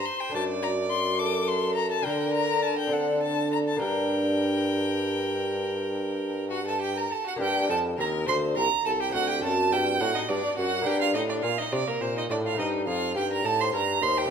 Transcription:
Already playing: lute A3 D#4 C5, violin C5
0.06 violin C6
0.21 violin G5
0.30 lute A3 D4 C5
0.34 lute F#2, bassoon F#2, violin D5 A5
0.63 violin A#5
0.91 violin C6
1.19 violin A4 D6
1.48 violin C6
1.75 violin A#5
1.91 violin A5
2.01 lute A#3 D4 A#4, violin A#4 G5
2.05 bassoon D3, lute D3
2.33 violin A#5
2.63 violin A5
2.79 violin G5
2.87 lute C4 D4 A4
2.93 violin A4 F#5
3.23 violin A5
3.53 violin A#5
3.68 violin A5
3.77 lute A#3 D4 A#4
3.81 lute G2, bassoon G2, violin A#4 G5
6.50 violin F#4 F#5
6.66 violin A4 A5
6.81 violin G4 G5
6.95 violin A#4 A#5
7.10 violin A4 A5
7.25 violin F#4 F#5
7.36 lute A#3 D4 G4, violin G4
7.40 bassoon G2, lute G2, violin G5
7.69 bassoon F2, lute F2, violin A4 A5
7.98 lute D#2, bassoon D#2, violin A#4 A#5
8.26 lute D2, bassoon D2, violin C5 C6
8.56 bassoon C2, violin A#4 A#5
8.85 bassoon C2, violin A4 A5
9.00 violin G4 G5
9.10 lute C4 D4 F#4
9.14 lute D2, bassoon D2, violin F#4 F#5
9.29 violin G4 G5
9.42 lute F#2, bassoon F#2, violin A4 A5
9.72 lute G2, bassoon G2, violin G4 G5
10.00 lute A2, bassoon A2, violin F#4 F#5
10.15 violin D#4 D#5
10.28 bassoon G2, lute G2, violin D4 D5
10.57 lute F#2, bassoon F#2, violin F#4 F#5
10.82 lute A#3 D4
10.86 lute G2, bassoon G2, violin G4 G5
11.01 violin F4 F5
11.14 lute A2, bassoon A2, violin D#4 D#5
11.29 violin D4 D5
11.42 lute A#2, bassoon A#2, violin F4 F5
11.58 violin D#4 D#5
11.72 lute C3, bassoon C3, violin D4 D5
11.87 violin A#3 A#4
12.00 bassoon A#2, lute A#2, violin C4 C5
12.15 violin D#4 D#5
12.30 bassoon A2, lute A2, violin D4 D5
12.45 violin F4 F5
12.55 bassoon G2, lute A3 C4 D#4
12.59 lute G2, violin D#4 D#5
12.87 bassoon F2, lute F2, violin F4 F5
13.16 lute G2, bassoon G2, violin G4 G5
13.30 violin A#4 A#5
13.44 lute A2, bassoon A2, violin A4 A5
13.59 violin C5 C6
13.73 lute G2, bassoon G2, violin A#4 A#5
14.01 bassoon D#2, lute D#2, violin C5 C6
14.17 violin G4 G5
14.26 lute A3 C4

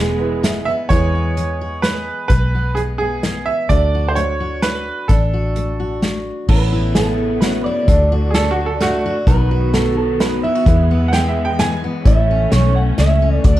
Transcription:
Already playing: fingered electric bass E1, steel-string acoustic guitar E3 G#3 B3, string section E3 G#3 B3, grand piano E4 G#4 B4, clean electric guitar G#4
0.20 grand piano E4 G#4 B4
0.43 steel-string acoustic guitar B2, grand piano E5, snare, closed hi-hat
0.65 steel-string acoustic guitar B3, upright piano E5
0.89 fingered electric bass E2, steel-string acoustic guitar E2 E3 G#3 B3, grand piano E4 G#4 B4, upright piano C#5, kick, closed hi-hat
0.93 steel-string acoustic guitar G#4
1.15 steel-string acoustic guitar B3
1.37 steel-string acoustic guitar E3, closed hi-hat
1.61 steel-string acoustic guitar G#4
1.82 steel-string acoustic guitar E3, upright piano B4, snare, closed hi-hat
2.28 fingered electric bass B1, steel-string acoustic guitar E2 G#3, upright piano B4, kick, closed hi-hat
2.55 steel-string acoustic guitar B3
2.75 steel-string acoustic guitar E3, upright piano G#4, closed hi-hat
2.98 steel-string acoustic guitar B3, upright piano G#4
3.23 steel-string acoustic guitar E3, snare, closed hi-hat
3.46 upright piano E5
3.69 fingered electric bass D2, steel-string acoustic guitar D3 D4, grand piano D4 F#4 A4, upright piano D5, kick, closed hi-hat
3.95 steel-string acoustic guitar F#4
4.08 upright piano C5
4.15 steel-string acoustic guitar A3, upright piano C#5, closed hi-hat
4.40 steel-string acoustic guitar F#4
4.62 steel-string acoustic guitar A3, upright piano B4, snare, closed hi-hat
5.08 fingered electric bass A1, steel-string acoustic guitar D3 D4, upright piano A4, kick, closed hi-hat
5.33 steel-string acoustic guitar F#4
5.56 steel-string acoustic guitar A3, closed hi-hat
5.80 steel-string acoustic guitar F#4
6.02 steel-string acoustic guitar A3, snare, closed hi-hat
6.49 fingered electric bass A1, steel-string acoustic guitar A2 B3, string section C#3 A3 B3, grand piano C#4 E4 A4, clean electric guitar B4, kick, crash
6.73 steel-string acoustic guitar E4
6.95 steel-string acoustic guitar E3 B3, clean electric guitar A4, snare, closed hi-hat
7.41 steel-string acoustic guitar E2, grand piano C#4 E4 F#4, clean electric guitar B4, snare, closed hi-hat
7.64 steel-string acoustic guitar E4, clean electric guitar D5
7.87 fingered electric bass D2, string section D3 F#3, steel-string acoustic guitar D3 D4, grand piano D4 F#4 A4, kick, closed hi-hat
8.12 steel-string acoustic guitar F#4
8.31 upright piano G#4, snare, closed hi-hat
8.35 steel-string acoustic guitar A3 D4, upright piano A4
8.51 upright piano F#4
8.66 upright piano A4
8.81 steel-string acoustic guitar A2, upright piano A3 F#4, snare, closed hi-hat
9.06 steel-string acoustic guitar F#4
9.26 fingered electric bass B1, steel-string acoustic guitar B2 D#3 B3 F#4, string section D#3 F#3 B3, grand piano D#4 F#4 B4, clean electric guitar B4, kick, closed hi-hat
9.51 steel-string acoustic guitar F#4
9.74 steel-string acoustic guitar D#3 B3, clean electric guitar A4, snare, closed hi-hat
9.97 clean electric guitar A4
10.20 steel-string acoustic guitar F#2, grand piano D#4 F#4 B4, clean electric guitar B4, snare, closed hi-hat
10.43 steel-string acoustic guitar E4, clean electric guitar E5
10.55 steel-string acoustic guitar F#4
10.66 fingered electric bass E2, steel-string acoustic guitar E2 G#3, string section E3 G#3, grand piano E4 G#4 B4, kick, closed hi-hat
10.91 steel-string acoustic guitar B3
11.08 upright piano F#5
11.13 steel-string acoustic guitar E3 G#3, upright piano G5, snare, closed hi-hat
11.28 upright piano E5
11.45 upright piano G5
11.59 steel-string acoustic guitar B2, upright piano G#5, snare, closed hi-hat
11.84 steel-string acoustic guitar B3
12.05 fingered electric bass A1, steel-string acoustic guitar A2 A3, string section A3 C#4, grand piano E4 A4 C#5, clean electric guitar E5, kick, closed hi-hat
12.31 steel-string acoustic guitar C#4
12.52 fingered electric bass B1, steel-string acoustic guitar E3 A3, clean electric guitar C#5, snare, closed hi-hat
12.76 clean electric guitar F#5
12.98 fingered electric bass C#2, steel-string acoustic guitar E2, clean electric guitar E5, snare, closed hi-hat
13.22 steel-string acoustic guitar C#4
13.44 fingered electric bass D2, steel-string acoustic guitar D3 B3, string section F#3 D4, grand piano F#4 A4 D5, clean electric guitar D5, kick, closed hi-hat
13.56 steel-string acoustic guitar D4

